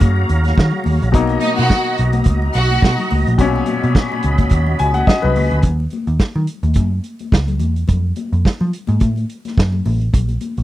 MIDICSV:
0, 0, Header, 1, 7, 480
1, 0, Start_track
1, 0, Key_signature, -6, "minor"
1, 0, Tempo, 562852
1, 968, Time_signature, 4, 2, 24, 8
1, 9066, End_track
2, 0, Start_track
2, 0, Title_t, "Tonewheel organ"
2, 0, Program_c, 0, 16
2, 0, Note_on_c, 0, 66, 60
2, 0, Note_on_c, 0, 73, 54
2, 0, Note_on_c, 0, 77, 53
2, 0, Note_on_c, 0, 82, 62
2, 930, Note_off_c, 0, 73, 0
2, 933, Note_off_c, 0, 66, 0
2, 956, Note_off_c, 0, 77, 0
2, 963, Note_on_c, 0, 75, 53
2, 966, Note_on_c, 0, 66, 64
2, 2849, Note_off_c, 0, 82, 0
2, 2896, Note_on_c, 0, 83, 65
2, 4769, Note_off_c, 0, 75, 0
2, 4770, Note_off_c, 0, 66, 0
2, 4791, Note_off_c, 0, 83, 0
2, 9066, End_track
3, 0, Start_track
3, 0, Title_t, "String section"
3, 0, Program_c, 1, 48
3, 1203, Note_on_c, 1, 75, 91
3, 1205, Note_on_c, 1, 63, 90
3, 1312, Note_off_c, 1, 75, 0
3, 1314, Note_off_c, 1, 63, 0
3, 1337, Note_on_c, 1, 66, 90
3, 1337, Note_on_c, 1, 78, 91
3, 1664, Note_off_c, 1, 66, 0
3, 1664, Note_off_c, 1, 78, 0
3, 2174, Note_on_c, 1, 78, 87
3, 2177, Note_on_c, 1, 66, 85
3, 2621, Note_off_c, 1, 78, 0
3, 2623, Note_off_c, 1, 66, 0
3, 9066, End_track
4, 0, Start_track
4, 0, Title_t, "Grand piano"
4, 0, Program_c, 2, 0
4, 0, Control_c, 2, 64, 127
4, 0, Note_on_c, 2, 49, 76
4, 0, Note_on_c, 2, 54, 65
4, 0, Note_on_c, 2, 58, 69
4, 0, Note_on_c, 2, 66, 78
4, 927, Note_off_c, 2, 49, 0
4, 929, Note_off_c, 2, 54, 0
4, 933, Note_off_c, 2, 58, 0
4, 941, Note_off_c, 2, 66, 0
4, 953, Note_on_c, 2, 47, 63
4, 961, Note_on_c, 2, 54, 66
4, 969, Note_on_c, 2, 58, 69
4, 977, Note_on_c, 2, 63, 77
4, 978, Control_c, 2, 64, 0
4, 1108, Control_c, 2, 64, 127
4, 2845, Note_off_c, 2, 47, 0
4, 2849, Note_off_c, 2, 54, 0
4, 2853, Note_off_c, 2, 58, 0
4, 2857, Note_off_c, 2, 63, 0
4, 2881, Note_on_c, 2, 47, 66
4, 2887, Note_on_c, 2, 54, 72
4, 2898, Note_on_c, 2, 46, 63
4, 2906, Note_on_c, 2, 61, 83
4, 4089, Note_on_c, 2, 80, 80
4, 4212, Note_off_c, 2, 80, 0
4, 4215, Note_on_c, 2, 78, 69
4, 4315, Note_off_c, 2, 78, 0
4, 4327, Note_on_c, 2, 75, 69
4, 4451, Note_off_c, 2, 75, 0
4, 4454, Note_on_c, 2, 71, 65
4, 4769, Note_off_c, 2, 47, 0
4, 4772, Note_off_c, 2, 54, 0
4, 4777, Note_off_c, 2, 46, 0
4, 4778, Note_off_c, 2, 71, 0
4, 4781, Note_off_c, 2, 61, 0
4, 4816, Control_c, 2, 64, 0
4, 9066, End_track
5, 0, Start_track
5, 0, Title_t, "Picked electric bass"
5, 0, Program_c, 3, 34
5, 14, Note_on_c, 3, 42, 85
5, 202, Note_off_c, 3, 42, 0
5, 252, Note_on_c, 3, 39, 85
5, 441, Note_off_c, 3, 39, 0
5, 491, Note_on_c, 3, 51, 97
5, 596, Note_off_c, 3, 51, 0
5, 733, Note_on_c, 3, 39, 99
5, 838, Note_off_c, 3, 39, 0
5, 872, Note_on_c, 3, 34, 92
5, 972, Note_off_c, 3, 34, 0
5, 972, Note_on_c, 3, 35, 111
5, 1161, Note_off_c, 3, 35, 0
5, 1355, Note_on_c, 3, 47, 85
5, 1433, Note_off_c, 3, 47, 0
5, 1699, Note_on_c, 3, 35, 94
5, 1885, Note_off_c, 3, 35, 0
5, 1929, Note_on_c, 3, 37, 87
5, 2118, Note_off_c, 3, 37, 0
5, 2175, Note_on_c, 3, 35, 75
5, 2362, Note_off_c, 3, 35, 0
5, 2412, Note_on_c, 3, 47, 99
5, 2516, Note_off_c, 3, 47, 0
5, 2661, Note_on_c, 3, 37, 97
5, 2762, Note_off_c, 3, 37, 0
5, 2790, Note_on_c, 3, 34, 90
5, 2870, Note_off_c, 3, 34, 0
5, 2889, Note_on_c, 3, 35, 108
5, 3078, Note_off_c, 3, 35, 0
5, 3274, Note_on_c, 3, 47, 84
5, 3352, Note_off_c, 3, 47, 0
5, 3619, Note_on_c, 3, 37, 83
5, 3804, Note_off_c, 3, 37, 0
5, 3850, Note_on_c, 3, 39, 90
5, 4039, Note_off_c, 3, 39, 0
5, 4095, Note_on_c, 3, 37, 84
5, 4281, Note_off_c, 3, 37, 0
5, 4472, Note_on_c, 3, 36, 93
5, 4576, Note_off_c, 3, 36, 0
5, 4576, Note_on_c, 3, 37, 88
5, 4678, Note_off_c, 3, 37, 0
5, 4706, Note_on_c, 3, 38, 84
5, 4788, Note_off_c, 3, 38, 0
5, 4805, Note_on_c, 3, 39, 95
5, 4996, Note_off_c, 3, 39, 0
5, 5179, Note_on_c, 3, 39, 72
5, 5263, Note_off_c, 3, 39, 0
5, 5420, Note_on_c, 3, 51, 74
5, 5504, Note_off_c, 3, 51, 0
5, 5654, Note_on_c, 3, 39, 85
5, 5740, Note_off_c, 3, 39, 0
5, 5767, Note_on_c, 3, 42, 78
5, 5957, Note_off_c, 3, 42, 0
5, 6247, Note_on_c, 3, 37, 82
5, 6490, Note_off_c, 3, 37, 0
5, 6490, Note_on_c, 3, 40, 80
5, 6679, Note_off_c, 3, 40, 0
5, 6726, Note_on_c, 3, 41, 92
5, 6917, Note_off_c, 3, 41, 0
5, 7100, Note_on_c, 3, 41, 84
5, 7184, Note_off_c, 3, 41, 0
5, 7341, Note_on_c, 3, 53, 81
5, 7425, Note_off_c, 3, 53, 0
5, 7578, Note_on_c, 3, 44, 95
5, 7663, Note_off_c, 3, 44, 0
5, 7686, Note_on_c, 3, 45, 76
5, 7877, Note_off_c, 3, 45, 0
5, 8168, Note_on_c, 3, 42, 90
5, 8358, Note_off_c, 3, 42, 0
5, 8407, Note_on_c, 3, 33, 89
5, 8598, Note_off_c, 3, 33, 0
5, 8647, Note_on_c, 3, 34, 107
5, 8838, Note_off_c, 3, 34, 0
5, 9022, Note_on_c, 3, 34, 78
5, 9066, Note_off_c, 3, 34, 0
5, 9066, End_track
6, 0, Start_track
6, 0, Title_t, "Muted picked electric bass strokes"
6, 7210, Note_on_c, 9, 29, 40
6, 7295, Note_off_c, 9, 29, 0
6, 9066, End_track
7, 0, Start_track
7, 0, Title_t, "Drums"
7, 0, Note_on_c, 9, 42, 68
7, 5, Note_on_c, 9, 62, 39
7, 5, Note_on_c, 9, 63, 83
7, 10, Note_on_c, 9, 36, 88
7, 86, Note_off_c, 9, 42, 0
7, 90, Note_off_c, 9, 62, 0
7, 90, Note_off_c, 9, 63, 0
7, 95, Note_off_c, 9, 36, 0
7, 138, Note_on_c, 9, 62, 35
7, 223, Note_off_c, 9, 62, 0
7, 250, Note_on_c, 9, 42, 62
7, 335, Note_off_c, 9, 42, 0
7, 374, Note_on_c, 9, 63, 58
7, 381, Note_on_c, 9, 42, 43
7, 400, Note_on_c, 9, 38, 33
7, 459, Note_off_c, 9, 63, 0
7, 467, Note_off_c, 9, 42, 0
7, 471, Note_on_c, 9, 62, 36
7, 485, Note_off_c, 9, 38, 0
7, 491, Note_on_c, 9, 36, 117
7, 504, Note_on_c, 9, 38, 123
7, 556, Note_off_c, 9, 62, 0
7, 576, Note_off_c, 9, 36, 0
7, 590, Note_off_c, 9, 38, 0
7, 607, Note_on_c, 9, 62, 37
7, 607, Note_on_c, 9, 64, 74
7, 692, Note_off_c, 9, 62, 0
7, 692, Note_off_c, 9, 64, 0
7, 715, Note_on_c, 9, 63, 83
7, 732, Note_on_c, 9, 46, 61
7, 800, Note_off_c, 9, 63, 0
7, 818, Note_off_c, 9, 46, 0
7, 868, Note_on_c, 9, 42, 39
7, 949, Note_on_c, 9, 64, 72
7, 954, Note_off_c, 9, 42, 0
7, 970, Note_on_c, 9, 36, 121
7, 973, Note_on_c, 9, 42, 81
7, 1034, Note_off_c, 9, 64, 0
7, 1056, Note_off_c, 9, 36, 0
7, 1058, Note_off_c, 9, 42, 0
7, 1087, Note_on_c, 9, 62, 37
7, 1100, Note_on_c, 9, 42, 36
7, 1172, Note_off_c, 9, 62, 0
7, 1186, Note_off_c, 9, 42, 0
7, 1199, Note_on_c, 9, 42, 62
7, 1207, Note_on_c, 9, 63, 76
7, 1284, Note_off_c, 9, 42, 0
7, 1292, Note_off_c, 9, 63, 0
7, 1344, Note_on_c, 9, 42, 38
7, 1430, Note_off_c, 9, 42, 0
7, 1441, Note_on_c, 9, 62, 32
7, 1449, Note_on_c, 9, 36, 113
7, 1453, Note_on_c, 9, 38, 106
7, 1526, Note_off_c, 9, 62, 0
7, 1535, Note_off_c, 9, 36, 0
7, 1538, Note_off_c, 9, 38, 0
7, 1687, Note_on_c, 9, 42, 79
7, 1772, Note_off_c, 9, 42, 0
7, 1813, Note_on_c, 9, 42, 46
7, 1819, Note_on_c, 9, 63, 89
7, 1899, Note_off_c, 9, 42, 0
7, 1904, Note_off_c, 9, 63, 0
7, 1910, Note_on_c, 9, 42, 76
7, 1926, Note_on_c, 9, 36, 85
7, 1929, Note_on_c, 9, 62, 38
7, 1929, Note_on_c, 9, 63, 89
7, 1995, Note_off_c, 9, 42, 0
7, 2012, Note_off_c, 9, 36, 0
7, 2014, Note_off_c, 9, 62, 0
7, 2014, Note_off_c, 9, 63, 0
7, 2064, Note_on_c, 9, 62, 34
7, 2149, Note_off_c, 9, 62, 0
7, 2162, Note_on_c, 9, 42, 59
7, 2248, Note_off_c, 9, 42, 0
7, 2299, Note_on_c, 9, 42, 45
7, 2306, Note_on_c, 9, 63, 59
7, 2385, Note_off_c, 9, 42, 0
7, 2391, Note_off_c, 9, 63, 0
7, 2407, Note_on_c, 9, 62, 33
7, 2408, Note_on_c, 9, 36, 104
7, 2425, Note_on_c, 9, 38, 116
7, 2492, Note_off_c, 9, 62, 0
7, 2494, Note_off_c, 9, 36, 0
7, 2510, Note_off_c, 9, 38, 0
7, 2543, Note_on_c, 9, 62, 34
7, 2543, Note_on_c, 9, 64, 79
7, 2553, Note_on_c, 9, 42, 39
7, 2628, Note_off_c, 9, 62, 0
7, 2628, Note_off_c, 9, 64, 0
7, 2638, Note_off_c, 9, 42, 0
7, 2646, Note_on_c, 9, 46, 52
7, 2651, Note_on_c, 9, 63, 77
7, 2732, Note_off_c, 9, 46, 0
7, 2736, Note_off_c, 9, 63, 0
7, 2789, Note_on_c, 9, 42, 43
7, 2874, Note_off_c, 9, 42, 0
7, 2888, Note_on_c, 9, 36, 108
7, 2888, Note_on_c, 9, 42, 81
7, 2890, Note_on_c, 9, 62, 34
7, 2890, Note_on_c, 9, 64, 73
7, 2973, Note_off_c, 9, 42, 0
7, 2974, Note_off_c, 9, 36, 0
7, 2975, Note_off_c, 9, 62, 0
7, 2975, Note_off_c, 9, 64, 0
7, 3033, Note_on_c, 9, 62, 33
7, 3119, Note_off_c, 9, 62, 0
7, 3121, Note_on_c, 9, 42, 58
7, 3140, Note_on_c, 9, 63, 78
7, 3206, Note_off_c, 9, 42, 0
7, 3225, Note_off_c, 9, 63, 0
7, 3270, Note_on_c, 9, 42, 35
7, 3355, Note_off_c, 9, 42, 0
7, 3368, Note_on_c, 9, 36, 109
7, 3373, Note_on_c, 9, 62, 36
7, 3375, Note_on_c, 9, 38, 104
7, 3454, Note_off_c, 9, 36, 0
7, 3458, Note_off_c, 9, 62, 0
7, 3460, Note_off_c, 9, 38, 0
7, 3511, Note_on_c, 9, 62, 33
7, 3511, Note_on_c, 9, 63, 48
7, 3597, Note_off_c, 9, 62, 0
7, 3597, Note_off_c, 9, 63, 0
7, 3605, Note_on_c, 9, 42, 76
7, 3690, Note_off_c, 9, 42, 0
7, 3735, Note_on_c, 9, 42, 46
7, 3740, Note_on_c, 9, 36, 91
7, 3746, Note_on_c, 9, 63, 92
7, 3820, Note_off_c, 9, 42, 0
7, 3825, Note_off_c, 9, 36, 0
7, 3831, Note_off_c, 9, 63, 0
7, 3834, Note_on_c, 9, 42, 69
7, 3847, Note_on_c, 9, 36, 101
7, 3854, Note_on_c, 9, 63, 79
7, 3919, Note_off_c, 9, 42, 0
7, 3932, Note_off_c, 9, 36, 0
7, 3940, Note_off_c, 9, 63, 0
7, 3979, Note_on_c, 9, 62, 30
7, 4064, Note_off_c, 9, 62, 0
7, 4084, Note_on_c, 9, 42, 65
7, 4169, Note_off_c, 9, 42, 0
7, 4212, Note_on_c, 9, 42, 40
7, 4219, Note_on_c, 9, 63, 55
7, 4298, Note_off_c, 9, 42, 0
7, 4304, Note_off_c, 9, 63, 0
7, 4326, Note_on_c, 9, 36, 104
7, 4341, Note_on_c, 9, 38, 114
7, 4411, Note_off_c, 9, 36, 0
7, 4426, Note_off_c, 9, 38, 0
7, 4457, Note_on_c, 9, 62, 35
7, 4457, Note_on_c, 9, 64, 76
7, 4542, Note_off_c, 9, 62, 0
7, 4542, Note_off_c, 9, 64, 0
7, 4568, Note_on_c, 9, 46, 58
7, 4573, Note_on_c, 9, 63, 84
7, 4653, Note_off_c, 9, 46, 0
7, 4658, Note_off_c, 9, 63, 0
7, 4700, Note_on_c, 9, 42, 40
7, 4785, Note_off_c, 9, 42, 0
7, 4796, Note_on_c, 9, 42, 70
7, 4803, Note_on_c, 9, 36, 106
7, 4806, Note_on_c, 9, 62, 30
7, 4806, Note_on_c, 9, 64, 66
7, 4882, Note_off_c, 9, 42, 0
7, 4889, Note_off_c, 9, 36, 0
7, 4891, Note_off_c, 9, 62, 0
7, 4891, Note_off_c, 9, 64, 0
7, 4947, Note_on_c, 9, 62, 32
7, 5032, Note_off_c, 9, 62, 0
7, 5035, Note_on_c, 9, 42, 47
7, 5057, Note_on_c, 9, 63, 70
7, 5120, Note_off_c, 9, 42, 0
7, 5142, Note_off_c, 9, 63, 0
7, 5177, Note_on_c, 9, 42, 31
7, 5262, Note_off_c, 9, 42, 0
7, 5282, Note_on_c, 9, 62, 30
7, 5284, Note_on_c, 9, 36, 111
7, 5284, Note_on_c, 9, 38, 98
7, 5367, Note_off_c, 9, 62, 0
7, 5369, Note_off_c, 9, 38, 0
7, 5370, Note_off_c, 9, 36, 0
7, 5421, Note_on_c, 9, 62, 28
7, 5421, Note_on_c, 9, 64, 59
7, 5506, Note_off_c, 9, 62, 0
7, 5506, Note_off_c, 9, 64, 0
7, 5519, Note_on_c, 9, 42, 66
7, 5604, Note_off_c, 9, 42, 0
7, 5654, Note_on_c, 9, 42, 41
7, 5659, Note_on_c, 9, 63, 76
7, 5740, Note_off_c, 9, 42, 0
7, 5744, Note_off_c, 9, 63, 0
7, 5747, Note_on_c, 9, 42, 72
7, 5763, Note_on_c, 9, 36, 77
7, 5765, Note_on_c, 9, 62, 36
7, 5765, Note_on_c, 9, 63, 83
7, 5832, Note_off_c, 9, 42, 0
7, 5849, Note_off_c, 9, 36, 0
7, 5850, Note_off_c, 9, 62, 0
7, 5850, Note_off_c, 9, 63, 0
7, 6002, Note_on_c, 9, 42, 50
7, 6087, Note_off_c, 9, 42, 0
7, 6133, Note_on_c, 9, 42, 36
7, 6144, Note_on_c, 9, 63, 51
7, 6219, Note_off_c, 9, 42, 0
7, 6230, Note_off_c, 9, 63, 0
7, 6242, Note_on_c, 9, 62, 31
7, 6244, Note_on_c, 9, 36, 91
7, 6255, Note_on_c, 9, 38, 109
7, 6327, Note_off_c, 9, 62, 0
7, 6329, Note_off_c, 9, 36, 0
7, 6341, Note_off_c, 9, 38, 0
7, 6376, Note_on_c, 9, 64, 69
7, 6378, Note_on_c, 9, 42, 34
7, 6461, Note_off_c, 9, 64, 0
7, 6464, Note_off_c, 9, 42, 0
7, 6476, Note_on_c, 9, 63, 78
7, 6480, Note_on_c, 9, 42, 53
7, 6561, Note_off_c, 9, 63, 0
7, 6565, Note_off_c, 9, 42, 0
7, 6619, Note_on_c, 9, 42, 41
7, 6705, Note_off_c, 9, 42, 0
7, 6716, Note_on_c, 9, 62, 32
7, 6716, Note_on_c, 9, 64, 67
7, 6725, Note_on_c, 9, 36, 97
7, 6726, Note_on_c, 9, 42, 67
7, 6801, Note_off_c, 9, 62, 0
7, 6801, Note_off_c, 9, 64, 0
7, 6810, Note_off_c, 9, 36, 0
7, 6811, Note_off_c, 9, 42, 0
7, 6958, Note_on_c, 9, 42, 57
7, 6965, Note_on_c, 9, 63, 72
7, 7043, Note_off_c, 9, 42, 0
7, 7050, Note_off_c, 9, 63, 0
7, 7102, Note_on_c, 9, 42, 33
7, 7187, Note_off_c, 9, 42, 0
7, 7208, Note_on_c, 9, 36, 98
7, 7217, Note_on_c, 9, 38, 101
7, 7293, Note_off_c, 9, 36, 0
7, 7303, Note_off_c, 9, 38, 0
7, 7338, Note_on_c, 9, 62, 29
7, 7338, Note_on_c, 9, 64, 59
7, 7424, Note_off_c, 9, 62, 0
7, 7424, Note_off_c, 9, 64, 0
7, 7448, Note_on_c, 9, 42, 74
7, 7533, Note_off_c, 9, 42, 0
7, 7567, Note_on_c, 9, 63, 80
7, 7575, Note_on_c, 9, 42, 38
7, 7652, Note_off_c, 9, 63, 0
7, 7661, Note_off_c, 9, 42, 0
7, 7676, Note_on_c, 9, 42, 63
7, 7683, Note_on_c, 9, 63, 81
7, 7685, Note_on_c, 9, 36, 93
7, 7761, Note_off_c, 9, 42, 0
7, 7768, Note_off_c, 9, 63, 0
7, 7771, Note_off_c, 9, 36, 0
7, 7812, Note_on_c, 9, 62, 29
7, 7822, Note_on_c, 9, 42, 32
7, 7898, Note_off_c, 9, 62, 0
7, 7907, Note_off_c, 9, 42, 0
7, 7927, Note_on_c, 9, 42, 55
7, 8013, Note_off_c, 9, 42, 0
7, 8059, Note_on_c, 9, 42, 37
7, 8060, Note_on_c, 9, 63, 57
7, 8078, Note_on_c, 9, 38, 26
7, 8144, Note_off_c, 9, 42, 0
7, 8145, Note_off_c, 9, 63, 0
7, 8163, Note_off_c, 9, 38, 0
7, 8166, Note_on_c, 9, 36, 103
7, 8181, Note_on_c, 9, 38, 103
7, 8251, Note_off_c, 9, 36, 0
7, 8267, Note_off_c, 9, 38, 0
7, 8293, Note_on_c, 9, 62, 34
7, 8293, Note_on_c, 9, 64, 68
7, 8378, Note_off_c, 9, 62, 0
7, 8378, Note_off_c, 9, 64, 0
7, 8403, Note_on_c, 9, 46, 49
7, 8405, Note_on_c, 9, 63, 76
7, 8489, Note_off_c, 9, 46, 0
7, 8490, Note_off_c, 9, 63, 0
7, 8540, Note_on_c, 9, 42, 39
7, 8626, Note_off_c, 9, 42, 0
7, 8638, Note_on_c, 9, 64, 66
7, 8644, Note_on_c, 9, 36, 96
7, 8646, Note_on_c, 9, 42, 77
7, 8723, Note_off_c, 9, 64, 0
7, 8730, Note_off_c, 9, 36, 0
7, 8731, Note_off_c, 9, 42, 0
7, 8772, Note_on_c, 9, 62, 33
7, 8775, Note_on_c, 9, 42, 34
7, 8857, Note_off_c, 9, 62, 0
7, 8860, Note_off_c, 9, 42, 0
7, 8875, Note_on_c, 9, 42, 55
7, 8879, Note_on_c, 9, 63, 71
7, 8960, Note_off_c, 9, 42, 0
7, 8964, Note_off_c, 9, 63, 0
7, 9017, Note_on_c, 9, 42, 36
7, 9066, Note_off_c, 9, 42, 0
7, 9066, End_track
0, 0, End_of_file